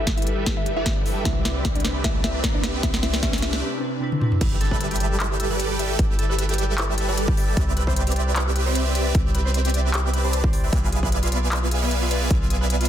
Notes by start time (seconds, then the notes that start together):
Already playing: G1 G3 D4 E4 G4 A4 B4 E5, riser
0.07 kick, snare, closed hi-hat
0.17 E4 E5, closed hi-hat
0.22 G3 D4, closed hi-hat
0.27 E4 A4 B4, closed hi-hat
0.46 kick, snare, closed hi-hat
0.57 E4 E5
0.66 closed hi-hat
0.77 G3 E4 G4 A4 B4 D5 E5
0.86 kick, snare, closed hi-hat
1.06 G3 G4 A4 B4 E5, open hi-hat
1.23 C2 C3 C4 D4 E4 G4 B4 D5 E5, kick, snare, closed hi-hat
1.27 B4
1.45 E4 E5, snare, closed hi-hat
1.65 kick, snare, closed hi-hat
1.75 D4 D5, closed hi-hat
1.80 C3 C4, closed hi-hat
1.85 D4 E4 B4, snare, closed hi-hat
2.02 C3 C4 D4 E4 G4 B4 D5 E5, kick, snare, closed hi-hat
2.24 E4 E5, snare, closed hi-hat
2.44 kick, snare, closed hi-hat
2.54 D4 D5
2.61 C3 C4 D4 E4, snare, closed hi-hat
2.65 B4
2.81 C2 C3 C4 D4 E4 G4 B4 D5 E5, kick, snare, closed hi-hat
2.85 B4
2.94 snare
3.03 E4 E5, snare, closed hi-hat
3.14 snare
3.21 C3 C4 D4 E4 G4 B4 D5 E5, kick, snare, closed hi-hat
3.33 snare, closed hi-hat
3.38 closed hi-hat
3.42 E4 E5, snare, closed hi-hat
3.53 snare
3.60 C3 C4 D4 E4
3.64 B4
3.80 C3 C4 D4 E4 B4
4.00 C3 C4 D4 E4
4.04 B4
4.12 high tom
4.19 C3 C4 D4 E4, mid tom
4.23 B4
4.32 mid tom
4.41 G1 G3 E4 G4 A4 B4 E5, kick, closed hi-hat, crash, impact
4.52 G4
4.61 A4, closed hi-hat
4.71 B4, kick
4.80 B4, closed hi-hat
4.91 G4, closed hi-hat
4.96 closed hi-hat
5.00 D5, closed hi-hat
5.11 A4
5.20 E4, clap, closed hi-hat
5.31 G4
5.40 A4, closed hi-hat
5.50 G3 G4 A4 B4 D5
5.59 B4, closed hi-hat
5.70 G4
5.79 G3 G4 A4 B4 D5 E5, closed hi-hat
5.90 A4
5.99 G1 G3 E4 G4 A4 B4 E5, kick, closed hi-hat
6.10 G4
6.19 A4, closed hi-hat
6.29 B4
6.38 B4, closed hi-hat
6.49 G4, closed hi-hat
6.54 closed hi-hat
6.58 D5, closed hi-hat
6.69 A4
6.78 E4, clap, closed hi-hat
6.89 G4
6.98 A4, closed hi-hat
7.08 G3 G4 A4 B4 D5
7.17 B4, closed hi-hat
7.28 G4, kick
7.37 G3 G4 A4 B4 D5 E5, open hi-hat
7.48 A4
7.57 C2 C4 E4 G4 B4 D5 E5, kick, closed hi-hat
7.67 G4
7.77 B4, closed hi-hat
7.87 C5, kick
7.96 C5, closed hi-hat
8.07 G4, closed hi-hat
8.12 closed hi-hat
8.16 D5, closed hi-hat
8.27 B4
8.36 E4, clap, closed hi-hat
8.46 G4
8.56 B4, closed hi-hat
8.66 C4 G4 B4 C5 D5 E5
8.75 C5, closed hi-hat
8.86 G4
8.95 C4 G4 B4 D5 E5, closed hi-hat
9.06 B4
9.15 C2 C4 E4 G4 B4 D5 E5, kick, closed hi-hat
9.25 G4
9.35 B4, closed hi-hat
9.45 C5
9.54 C5, closed hi-hat
9.65 G4, closed hi-hat
9.70 closed hi-hat
9.74 D5, closed hi-hat
9.85 B4
9.94 E4, clap, closed hi-hat
10.04 G4
10.14 B4, closed hi-hat
10.24 C4 G4 B4 C5 D5 A5
10.33 closed hi-hat
10.44 G4, kick
10.53 D5, open hi-hat
10.64 C4 G4 B4 D5 E5
10.73 B1 B3 E4 B4 D5 E5 F5 G#5, kick, closed hi-hat
10.83 F4
10.92 G#4, closed hi-hat
11.03 B4, kick
11.12 B4, closed hi-hat
11.23 F4, closed hi-hat
11.27 closed hi-hat
11.32 D5, closed hi-hat
11.42 G#4
11.52 E4, clap, closed hi-hat
11.62 F4
11.71 G#4, closed hi-hat
11.82 B3 B4 D5 E5 F5 G#5
11.91 B4, closed hi-hat
12.02 F4
12.11 B3 B4 D5 E5 F5 G#5, closed hi-hat
12.21 G#4
12.31 B1 B3 E4 B4 D5 E5 F5 G#5, kick, closed hi-hat
12.41 F4
12.50 G#4, closed hi-hat
12.61 B4
12.70 B4, closed hi-hat
12.81 F4, closed hi-hat
12.85 closed hi-hat